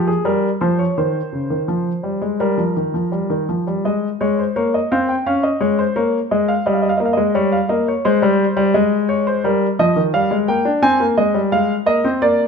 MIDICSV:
0, 0, Header, 1, 2, 480
1, 0, Start_track
1, 0, Key_signature, -4, "major"
1, 0, Tempo, 717703
1, 649, Time_signature, 4, 2, 24, 8
1, 3051, Tempo, 695249
1, 8516, End_track
2, 0, Start_track
2, 0, Title_t, "Grand piano"
2, 0, Program_c, 0, 0
2, 0, Note_on_c, 0, 53, 72
2, 49, Note_on_c, 0, 68, 64
2, 77, Note_off_c, 0, 53, 0
2, 166, Note_off_c, 0, 68, 0
2, 167, Note_on_c, 0, 55, 72
2, 168, Note_on_c, 0, 70, 65
2, 316, Note_off_c, 0, 55, 0
2, 317, Note_off_c, 0, 70, 0
2, 407, Note_on_c, 0, 72, 58
2, 410, Note_on_c, 0, 53, 73
2, 524, Note_off_c, 0, 72, 0
2, 526, Note_on_c, 0, 73, 59
2, 558, Note_off_c, 0, 53, 0
2, 644, Note_off_c, 0, 73, 0
2, 653, Note_on_c, 0, 51, 54
2, 654, Note_on_c, 0, 72, 53
2, 800, Note_off_c, 0, 51, 0
2, 886, Note_on_c, 0, 49, 48
2, 1003, Note_off_c, 0, 49, 0
2, 1005, Note_on_c, 0, 51, 49
2, 1122, Note_off_c, 0, 51, 0
2, 1125, Note_on_c, 0, 53, 57
2, 1274, Note_off_c, 0, 53, 0
2, 1360, Note_on_c, 0, 55, 55
2, 1479, Note_off_c, 0, 55, 0
2, 1482, Note_on_c, 0, 56, 53
2, 1582, Note_off_c, 0, 72, 0
2, 1601, Note_off_c, 0, 56, 0
2, 1604, Note_on_c, 0, 70, 59
2, 1606, Note_on_c, 0, 55, 64
2, 1723, Note_on_c, 0, 53, 51
2, 1724, Note_off_c, 0, 55, 0
2, 1844, Note_off_c, 0, 53, 0
2, 1849, Note_on_c, 0, 51, 49
2, 1967, Note_on_c, 0, 53, 49
2, 1968, Note_off_c, 0, 51, 0
2, 2085, Note_on_c, 0, 55, 53
2, 2087, Note_off_c, 0, 53, 0
2, 2205, Note_on_c, 0, 51, 54
2, 2207, Note_off_c, 0, 55, 0
2, 2313, Note_off_c, 0, 70, 0
2, 2328, Note_off_c, 0, 51, 0
2, 2334, Note_on_c, 0, 53, 47
2, 2452, Note_off_c, 0, 53, 0
2, 2456, Note_on_c, 0, 55, 52
2, 2573, Note_off_c, 0, 55, 0
2, 2573, Note_on_c, 0, 56, 57
2, 2577, Note_on_c, 0, 75, 56
2, 2722, Note_off_c, 0, 56, 0
2, 2724, Note_off_c, 0, 75, 0
2, 2813, Note_on_c, 0, 73, 61
2, 2815, Note_on_c, 0, 56, 70
2, 2928, Note_off_c, 0, 73, 0
2, 2937, Note_on_c, 0, 72, 54
2, 2961, Note_off_c, 0, 56, 0
2, 3049, Note_off_c, 0, 72, 0
2, 3050, Note_on_c, 0, 58, 75
2, 3050, Note_on_c, 0, 73, 60
2, 3168, Note_off_c, 0, 73, 0
2, 3176, Note_on_c, 0, 75, 59
2, 3201, Note_off_c, 0, 58, 0
2, 3292, Note_off_c, 0, 75, 0
2, 3295, Note_on_c, 0, 77, 57
2, 3297, Note_on_c, 0, 60, 78
2, 3411, Note_off_c, 0, 77, 0
2, 3414, Note_on_c, 0, 79, 59
2, 3445, Note_off_c, 0, 60, 0
2, 3531, Note_off_c, 0, 79, 0
2, 3536, Note_on_c, 0, 61, 78
2, 3537, Note_on_c, 0, 77, 67
2, 3652, Note_off_c, 0, 77, 0
2, 3653, Note_on_c, 0, 75, 63
2, 3683, Note_off_c, 0, 61, 0
2, 3769, Note_off_c, 0, 75, 0
2, 3772, Note_on_c, 0, 56, 69
2, 3772, Note_on_c, 0, 73, 56
2, 3889, Note_off_c, 0, 73, 0
2, 3897, Note_on_c, 0, 72, 62
2, 3920, Note_off_c, 0, 56, 0
2, 4011, Note_off_c, 0, 72, 0
2, 4015, Note_on_c, 0, 73, 56
2, 4016, Note_on_c, 0, 58, 76
2, 4164, Note_off_c, 0, 58, 0
2, 4164, Note_off_c, 0, 73, 0
2, 4260, Note_on_c, 0, 75, 60
2, 4261, Note_on_c, 0, 56, 70
2, 4374, Note_off_c, 0, 75, 0
2, 4378, Note_on_c, 0, 77, 61
2, 4409, Note_off_c, 0, 56, 0
2, 4494, Note_off_c, 0, 77, 0
2, 4500, Note_on_c, 0, 75, 56
2, 4502, Note_on_c, 0, 55, 73
2, 4551, Note_on_c, 0, 77, 49
2, 4553, Note_off_c, 0, 75, 0
2, 4606, Note_off_c, 0, 77, 0
2, 4612, Note_on_c, 0, 75, 58
2, 4650, Note_off_c, 0, 55, 0
2, 4660, Note_on_c, 0, 77, 59
2, 4664, Note_off_c, 0, 75, 0
2, 4715, Note_on_c, 0, 75, 50
2, 4716, Note_off_c, 0, 77, 0
2, 4734, Note_on_c, 0, 58, 72
2, 4770, Note_off_c, 0, 75, 0
2, 4772, Note_on_c, 0, 77, 54
2, 4825, Note_on_c, 0, 75, 63
2, 4826, Note_off_c, 0, 77, 0
2, 4852, Note_off_c, 0, 58, 0
2, 4854, Note_on_c, 0, 56, 69
2, 4971, Note_off_c, 0, 56, 0
2, 4972, Note_off_c, 0, 75, 0
2, 4974, Note_on_c, 0, 55, 80
2, 4976, Note_on_c, 0, 73, 60
2, 5092, Note_off_c, 0, 73, 0
2, 5095, Note_on_c, 0, 77, 63
2, 5123, Note_off_c, 0, 55, 0
2, 5211, Note_on_c, 0, 75, 63
2, 5212, Note_off_c, 0, 77, 0
2, 5212, Note_on_c, 0, 58, 74
2, 5330, Note_off_c, 0, 75, 0
2, 5344, Note_on_c, 0, 73, 58
2, 5362, Note_off_c, 0, 58, 0
2, 5456, Note_off_c, 0, 73, 0
2, 5458, Note_on_c, 0, 72, 74
2, 5460, Note_on_c, 0, 56, 89
2, 5574, Note_off_c, 0, 56, 0
2, 5579, Note_on_c, 0, 55, 85
2, 5725, Note_off_c, 0, 55, 0
2, 5815, Note_on_c, 0, 55, 86
2, 5918, Note_off_c, 0, 72, 0
2, 5929, Note_off_c, 0, 55, 0
2, 5937, Note_on_c, 0, 56, 79
2, 5937, Note_on_c, 0, 75, 59
2, 6082, Note_off_c, 0, 75, 0
2, 6176, Note_on_c, 0, 73, 66
2, 6288, Note_off_c, 0, 73, 0
2, 6301, Note_on_c, 0, 72, 67
2, 6396, Note_off_c, 0, 56, 0
2, 6411, Note_off_c, 0, 72, 0
2, 6421, Note_on_c, 0, 55, 75
2, 6423, Note_on_c, 0, 70, 63
2, 6566, Note_off_c, 0, 55, 0
2, 6567, Note_off_c, 0, 70, 0
2, 6662, Note_on_c, 0, 53, 65
2, 6663, Note_on_c, 0, 75, 84
2, 6772, Note_off_c, 0, 53, 0
2, 6779, Note_on_c, 0, 51, 59
2, 6808, Note_off_c, 0, 75, 0
2, 6890, Note_off_c, 0, 51, 0
2, 6900, Note_on_c, 0, 55, 64
2, 6901, Note_on_c, 0, 77, 76
2, 7011, Note_off_c, 0, 55, 0
2, 7018, Note_on_c, 0, 56, 66
2, 7046, Note_off_c, 0, 77, 0
2, 7130, Note_off_c, 0, 56, 0
2, 7139, Note_on_c, 0, 58, 67
2, 7139, Note_on_c, 0, 79, 73
2, 7250, Note_off_c, 0, 58, 0
2, 7255, Note_on_c, 0, 62, 73
2, 7284, Note_off_c, 0, 79, 0
2, 7368, Note_off_c, 0, 62, 0
2, 7374, Note_on_c, 0, 60, 79
2, 7375, Note_on_c, 0, 80, 91
2, 7487, Note_off_c, 0, 60, 0
2, 7496, Note_on_c, 0, 58, 72
2, 7522, Note_off_c, 0, 80, 0
2, 7609, Note_off_c, 0, 58, 0
2, 7617, Note_on_c, 0, 56, 67
2, 7617, Note_on_c, 0, 75, 81
2, 7729, Note_off_c, 0, 56, 0
2, 7733, Note_on_c, 0, 55, 67
2, 7763, Note_off_c, 0, 75, 0
2, 7847, Note_off_c, 0, 55, 0
2, 7856, Note_on_c, 0, 56, 67
2, 7856, Note_on_c, 0, 77, 78
2, 8002, Note_off_c, 0, 56, 0
2, 8003, Note_off_c, 0, 77, 0
2, 8091, Note_on_c, 0, 58, 69
2, 8093, Note_on_c, 0, 75, 87
2, 8206, Note_off_c, 0, 58, 0
2, 8217, Note_on_c, 0, 60, 70
2, 8241, Note_off_c, 0, 75, 0
2, 8330, Note_off_c, 0, 60, 0
2, 8337, Note_on_c, 0, 58, 72
2, 8338, Note_on_c, 0, 74, 83
2, 8485, Note_off_c, 0, 74, 0
2, 8516, Note_off_c, 0, 58, 0
2, 8516, End_track
0, 0, End_of_file